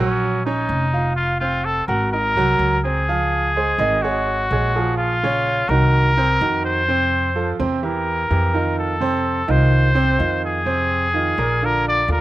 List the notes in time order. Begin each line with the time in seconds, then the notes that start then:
0.00 A#1 F#3 C#4 F#4
0.45 C#4 D#4 C#5
0.69 F1
0.93 F4 F5
1.16 F4
1.40 C4 F4 C5
1.65 A4
1.88 G#1 F#4 A#4 F#5
2.12 D#4 A#4 D#5
2.36 C2 F#3 F#4
2.59 C#2
2.84 C4 G#4 C5
3.09 F3 F4 F5
3.56 G#3 G#4 C5
3.78 G#1 D#3 D#4 D#5
4.02 G#3 F#4 G#4 C#5
4.51 A#1 G#3 G#4 C#5
4.75 F3 F4 G#4
4.97 F4
5.23 C#3 C#4 C#5
5.69 C2 D#3 D#4 F#4 A#4
6.17 C3 C4 C5
6.41 F2 D#3 D#4 F#4
6.65 C5
6.88 C3 C4 C5
7.35 F3 F4 A4
7.59 E2 C3 C4 C5
7.83 E3 E4 G4 A#4
8.30 F2 E3 E4 G4
8.54 D#3 D#4 F4
8.79 A4
9.00 C3 C4 C5
9.48 C2 D#3 D#4 F4 C5
9.95 C3 C4 C5
10.18 F2 D#3 D#4 F4
10.45 G#4
10.66 C3 C4 C5
11.14 D#3 D#4 F4
11.38 A#1 A#2 A#3 A#4
11.62 D3 D4 F4 A#4
11.88 D5
12.08 D#2 D3 D4 F4
12.12 A#4